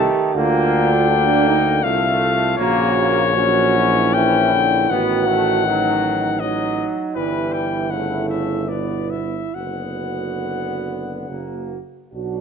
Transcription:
Already playing: D#3 A3 G4
0.33 D2 D3 A#3 F4 G5
1.09 A#3 D4
1.47 D#4
1.83 C2 A3 F4 F5
2.57 A#1 A#3 F#4 C#5
2.61 C#3
2.96 A#3
3.33 F#3 C#4 F#4
3.76 E4
4.14 E3 E4 G5
4.54 D3
4.90 A1 D#3 B3 F#4 F#5
5.29 A3
5.65 F#3 D#4
6.39 F#3 D#4 D#5
7.15 G1 E3 G3 E4 B4
7.53 G5
7.90 C#3 A3 F#5
8.29 E5
8.69 B2 B3 E4 D5
9.10 E5
9.54 F#1 D3 B3 F#4 F#5
11.27 F#1 C#3 A#3 F#4
12.13 B1 F#3 D4 F#4

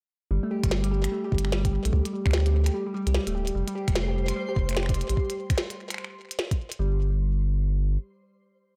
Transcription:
0.31 G1 G3
0.43 A3
0.51 G4
0.64 G1 G3, finger snap, kick, closed hi-hat
0.71 G3, snare
0.84 G3, closed hi-hat
0.92 G4
1.04 G3, finger snap, closed hi-hat
1.12 A3
1.24 G4
1.32 G1 G3, kick
1.38 closed hi-hat
1.45 G3, finger snap
1.52 G3, snare
1.65 G4, kick, closed hi-hat
1.73 G3
1.85 A#1 A3, closed hi-hat
1.93 D2 G4, kick
2.05 G3, closed hi-hat
2.13 G3
2.26 D2 G3, finger snap, kick
2.31 G4, finger snap
2.33 finger snap, snare
2.38 finger snap
2.40 finger snap
2.46 G3, closed hi-hat
2.54 A3
2.66 G4, finger snap, closed hi-hat
2.74 G3
2.87 G3
2.94 G3
3.07 C2 G4, closed hi-hat
3.15 G3, snare
3.27 D1 A3, closed hi-hat
3.35 G4
3.47 G3, closed hi-hat
3.55 F1 G3 C5
3.68 G3, closed hi-hat
3.75 G4
3.88 F1 G3, finger snap, kick, closed hi-hat
3.95 A3, snare
4.08 G4
4.16 G3
4.28 G3, finger snap, closed hi-hat
4.36 G3
4.49 G4
4.56 F1, kick
4.69 A3, finger snap, closed hi-hat
4.71 finger snap
4.73 finger snap
4.75 G4, finger snap
4.77 finger snap, snare
4.80 finger snap
4.83 finger snap
4.86 G3, finger snap, kick, closed hi-hat
4.94 G3, closed hi-hat
5.01 closed hi-hat
5.09 A1 G3, closed hi-hat
5.17 kick
5.30 closed hi-hat
5.50 finger snap, kick, closed hi-hat
5.58 snare
5.70 closed hi-hat
5.90 finger snap, closed hi-hat
5.94 finger snap
5.98 finger snap
6.04 finger snap
6.31 closed hi-hat
6.39 snare
6.51 kick, closed hi-hat
6.72 closed hi-hat
6.79 G1 G3

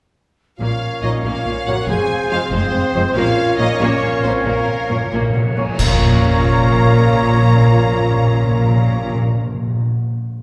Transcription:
0.59 A#1 A#2 A#3 C#4 F4 A#4 C#5 F5
1.02 A#1 A#2 F3 A#3 D#4 C#5 D#5
1.23 A#1 A#2 A#3 F4 F5
1.46 A#1 A#2 A#3
1.67 A#1 A#2 F3 A#3 F#4 C#5 F#5
1.88 F1 F2 G#3 C4 G#4 C5 G#5
2.30 F1 F2 F3 G#3 F4 C5 F5
2.51 F1 F2 G#3 C4 C5
2.73 F1 F2 G#3
2.94 F1 F2 F3 G#3 C5
3.15 A#1 A#2 A#3 C#4 F4 A#4 C#5 F5
3.58 A#1 A#2 F3 A#3 D#4 C#5 D#5
3.68 A#2
3.79 A#1 A#2 A#3 C#4 C#5
3.84 A#2
3.90 A#2
3.97 A#2
4.01 A#1 A#2 A#3
4.13 A#2
4.20 A#1 A#2 F3 A#3 C4 C5
4.24 C5 C#5
4.36 A#2
4.44 A#1 A#2 A#3 A#4
4.52 A#2
4.60 A#2
4.68 A#2
4.76 A#2
4.83 A#2
4.89 A#1 A#2 F3 A#3 C#5
4.98 A#2
5.07 A#2
5.12 A#1 A#2 A#3 F5
5.22 A#2
5.30 A#2
5.34 A#1 A#2 A#3 F#5
5.46 A#2
5.52 A#2
5.57 A#1 A#2 F3 A#3 C#5 G#5
5.69 A#2
5.78 A#1 A#2 F3 A#3 C#4 F4 A#4 C#5 F5 A#5, concert bass drum, crash
5.86 A#2
5.92 A#2
5.99 A#2
6.05 A#2
6.12 A#2
6.18 A#2
6.25 A#2
6.31 A#2
6.38 A#2
6.45 A#2
6.52 A#2
6.58 A#2
6.64 A#2
6.71 A#2
6.77 A#2
6.83 A#2
6.90 A#2
6.96 A#2
7.03 A#2
7.10 A#2
7.16 A#2
7.22 A#2
7.29 A#2
7.35 A#2
7.42 A#2
7.48 A#2
7.54 A#2
7.61 A#2
7.67 A#2
7.86 A#2
7.93 A#2
8.00 A#2
8.06 A#2
8.12 A#2
8.19 A#2
8.25 A#2
8.32 A#2
8.39 A#2
8.45 A#2
8.52 A#2
8.58 A#2
8.64 A#2
8.71 A#2
8.77 A#2
8.83 A#2
8.90 A#2
8.97 A#2
9.03 A#2
9.09 A#2
9.15 A#2
9.22 A#2
9.28 A#2
9.35 A#2
9.41 A#2
9.47 A#2
9.54 A#2
9.61 A#2
9.67 A#2
9.74 A#2
9.80 A#2

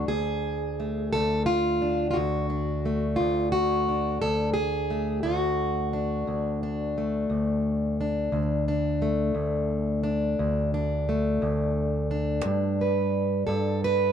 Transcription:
Already playing: D4
0.08 D2 G#4
0.80 A3
1.13 D2 A4
1.46 F4
1.82 D4
2.11 F4 F#4
2.16 D2
2.50 D4
2.86 A3
3.16 D2 F4
3.52 F#4
3.89 D4
4.22 D2 A4
4.54 G#4
4.90 A3
5.23 D2 F#4
5.93 D4
6.27 D2
6.63 D4
6.98 A3
7.30 D2
8.01 D4
8.32 D2
8.68 D4
9.02 A3
9.35 D2
10.03 D4
10.39 D2
10.74 D4
11.09 A3
11.42 D2
12.11 D4
12.45 G2
12.81 B4
13.47 G2 A4
13.84 B4

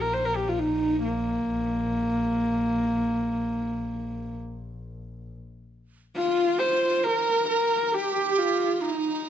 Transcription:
Already playing: A#1
0.01 A#4
0.13 C5
0.25 A#4
0.36 G4
0.49 F4
0.59 D#4
1.04 A#3
6.16 F4
6.59 C5
7.04 A#4
7.48 A#4
7.87 A#4
7.92 G4
8.38 F4
8.81 D#4

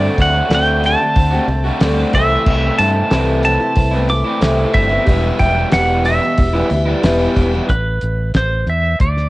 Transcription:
Already playing: D3 A3 C4 D4 F#4 C5 D5
0.18 D2 D3 A3 C4 F#5, kick, open hi-hat
0.33 A3 C4 F#4
0.49 D2 D3 A3 C4 F#4 C5 D5, snare, open hi-hat
0.54 G5
0.81 D3 A3 C4 F#4, open hi-hat
0.86 G4 A5
0.99 A3 C4, muted overdriven electric guitar stroke
1.14 D2 C5 E5, kick, open hi-hat
1.30 A3 C4 F#4 G4
1.48 C2 D3 A3 C4, muted overdriven electric guitar stroke, open hi-hat
1.64 A3 C4 F#4
1.79 D2 D3 G3 A3 C4 F#4 C5 D5, snare, open hi-hat
2.12 C2 C3 E3 A3 C4 E4 A4 B4 C5 E5, kick, open hi-hat
2.29 A3 C4 E4
2.45 C2 C3 E3 A3 C4 E4, kick, crash
2.79 G2 E3 A3 E4 A5, open hi-hat
2.94 A3 C4 E4
3.09 C2 C3 E3 A3 C4 E4 A4 B4 C5, snare, open hi-hat
3.43 E3 A3 C4 E4 A5, open hi-hat
3.47 B3
3.59 A3 E4, muted overdriven electric guitar stroke
3.76 C2 A4 B4 C5, kick, open hi-hat
3.91 A3 B3 C4 E4
4.09 E3 A3 E4 D6, muted overdriven electric guitar stroke, open hi-hat
4.25 A3 C4 E4
4.40 C2 C3 E3 A3 C4 E4 A4 B4 C5, snare, open hi-hat
4.73 G1 E3 A3 C4 E4 E5, kick, open hi-hat
4.89 A3 B3 C4 E4
5.05 E1 E2 B2 E3 G3 B3 E4 G4 B4 E5, kick, open hi-hat
5.39 E1 E3 G3 B3 E4 G5, kick, open hi-hat
5.56 E3 G3 B3 E4
5.70 E1 E2 B2 E3 G4 B4 E5 F#5, snare, open hi-hat
5.74 G3 B3 E4
6.05 E3 G3 B3 E4 E5, open hi-hat
6.21 E3 G3 B3 E4, muted overdriven electric guitar stroke
6.37 E1 G4 B4 E5, kick, open hi-hat
6.53 E3 G3 B3 E4
6.70 D2 E3 G3 B3, muted overdriven electric guitar stroke, open hi-hat
6.74 E4
6.86 E3 G3 B3 E4
6.92 D5
7.03 E1 E2 B2 E3 G3 B3 E4 G4 B4 E5 B5, snare, open hi-hat
7.20 G5
7.35 E1 E3 G3 B3 E4 E5, kick, open hi-hat
7.53 E3 G3 B3 E4
7.69 A1 B4, kick, closed hi-hat
8.01 A1, closed hi-hat
8.34 A1 C5, kick, snare, closed hi-hat
8.67 E2 E5, closed hi-hat
9.00 D2 D5, kick, closed hi-hat
9.17 snare

